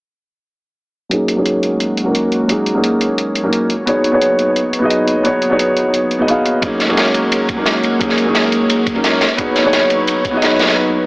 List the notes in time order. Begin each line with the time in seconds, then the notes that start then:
1.09 F#3 G#3 A#3 C#4 D#4 F#4 G#4 A#4 C#5, closed hi-hat
1.28 closed hi-hat
1.36 F#3 A#3 C#4 D#4 G#4
1.46 closed hi-hat
1.63 closed hi-hat
1.80 closed hi-hat
1.97 closed hi-hat
2.03 F#3 A#3 C#4
2.08 D#4 A#4
2.15 closed hi-hat
2.32 closed hi-hat
2.47 F#3 A#3 C#4 D#4 G#4, closed hi-hat
2.66 closed hi-hat
2.74 F#3 A#3 C#4 D#4 G#4
2.84 closed hi-hat
3.01 closed hi-hat
3.18 closed hi-hat
3.35 closed hi-hat
3.43 F#3 A#3 C#4 D#4 A#4
3.53 closed hi-hat
3.69 F#3 D#4 B4, closed hi-hat
3.86 B3 D#4 F#4 G#4 C#5, closed hi-hat
4.04 closed hi-hat
4.12 B3 D#4 F#4 G#4 C#5
4.21 closed hi-hat
4.39 closed hi-hat
4.56 closed hi-hat
4.73 closed hi-hat
4.79 B3 D#4 F#4
4.84 G#4 D#5
4.90 closed hi-hat
5.08 closed hi-hat
5.23 B3 D#4 F#4 G#4 C#5, closed hi-hat
5.42 closed hi-hat
5.50 B3 D#4 F#4 G#4 C#5
5.59 closed hi-hat
5.77 closed hi-hat
5.94 closed hi-hat
6.11 closed hi-hat
6.18 B3 D#4 F#4 G#4 D#5
6.27 B3 D#4 F#4 G#4 F5, closed hi-hat
6.46 closed hi-hat
6.61 F#3 G#3 A#3 C#4 D#4 F#4 G#4 A#4 C#5, kick, closed hi-hat, ride
6.80 snare, closed hi-hat, ride
6.87 F#3 A#3 C#4 D#4 G#4, ride
6.97 snare, closed hi-hat, ride
7.14 closed hi-hat, ride
7.32 closed hi-hat, ride
7.49 kick, closed hi-hat, ride
7.55 F#3 A#3 C#4
7.60 D#4 A#4
7.66 snare, closed hi-hat, ride
7.76 ride
7.83 closed hi-hat, ride
7.99 F#3 A#3 C#4 D#4 G#4, kick, closed hi-hat, ride
8.09 snare
8.17 closed hi-hat, ride
8.25 F#3 A#3 C#4 D#4 G#4
8.35 snare, closed hi-hat, ride
8.44 ride
8.52 closed hi-hat, ride
8.70 closed hi-hat, ride
8.86 kick, closed hi-hat, ride
8.94 F#3 A#3 C#4 D#4 A#4, ride
9.04 snare, closed hi-hat, ride
9.21 F#3 D#4 B4 C#5, snare, closed hi-hat, ride
9.37 B3 D#4 F#4 G#4 C#5, kick, closed hi-hat, ride
9.56 snare, closed hi-hat, ride
9.63 B3 D#4 F#4 G#4 C#5, ride
9.73 snare, closed hi-hat, ride
9.90 closed hi-hat, ride
10.07 closed hi-hat, ride
10.25 kick, closed hi-hat, ride
10.30 B3 D#4 F#4
10.35 G#4 D#5
10.42 snare, closed hi-hat, ride
10.51 ride
10.59 snare, closed hi-hat, ride
10.63 snare, ride
10.68 snare, ride